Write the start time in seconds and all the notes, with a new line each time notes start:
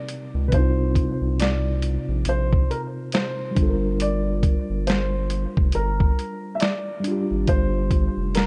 Already playing: C3 C4 D#4 A#4 D5
0.09 closed hi-hat
0.34 C#2
0.48 C3 C4 B4, closed hi-hat
0.52 C2 D#4 C5, kick
0.59 F4
0.95 kick, closed hi-hat
1.21 C2
1.40 D5, snare, closed hi-hat
1.82 closed hi-hat
2.09 A#1
2.25 A#1 C5, closed hi-hat
2.53 kick
2.71 A#4, closed hi-hat
3.12 C5, snare, closed hi-hat
3.51 G3
3.55 G1 D4 F4, kick, closed hi-hat
3.63 A4
3.69 A#4
4.00 D5, closed hi-hat
4.43 kick, closed hi-hat
4.70 G1
4.87 C5, snare, closed hi-hat
5.30 closed hi-hat
5.57 F1, kick
5.72 G1 A#4, closed hi-hat
6.00 kick
6.19 closed hi-hat
6.55 E5
6.60 D5, snare, closed hi-hat
7.00 G3 D4
7.04 F4, closed hi-hat
7.11 G4
7.31 G#1
7.47 G1 C5, kick, closed hi-hat
7.91 kick, closed hi-hat
8.17 F1
8.35 A#4, snare, closed hi-hat